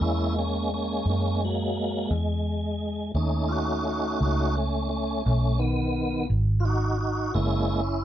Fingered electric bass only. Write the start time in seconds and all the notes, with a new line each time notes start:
0.01 E2
1.05 F#2
2.11 E2
3.14 D#2
4.21 C#2
5.26 B1
6.30 G#1
7.35 F#1